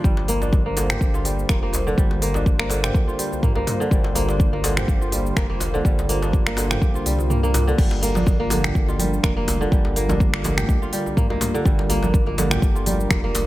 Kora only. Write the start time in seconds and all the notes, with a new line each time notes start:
Already playing: D3 F3 A#3 D4 F4 G4
0.04 G3
0.28 A#3
0.42 D4
0.66 A#3
0.77 D3
0.90 G4
1.14 F4
1.25 G3
1.49 A#3
1.63 A#3
1.87 D3
1.98 G3
2.22 A#3
2.35 D4
2.59 A#3
2.70 D3
2.83 G4
3.08 F4
3.19 G3
3.43 A#3
3.56 A#3
3.80 D3
3.91 G3
4.15 A#3
4.29 D4
4.53 A#3
4.64 D3
4.77 G4
5.01 F4
5.12 G3
5.36 A#3
5.50 A#3
5.74 D3
5.85 G3
6.09 A#3
6.22 D4
6.46 A#3
6.57 D3
6.71 G4
6.95 F4
7.06 G3
7.30 A#3
7.43 A#3
7.67 D3
7.78 G3
8.03 A#3
8.16 D4
8.40 A#3
8.51 D3
8.64 G4
8.88 F4
8.99 G3
9.23 A#3
9.37 A#3
9.61 D3
9.72 G3
9.96 A#3
10.09 D4
10.33 A#3
10.45 D3
10.58 G4
10.82 F4
10.93 G3
11.17 A#3
11.30 A#3
11.54 D3
11.65 G3
11.90 A#3
12.03 D4
12.27 A#3
12.38 D3
12.51 G4
12.75 F4
12.86 G3
13.11 A#3
13.24 A#3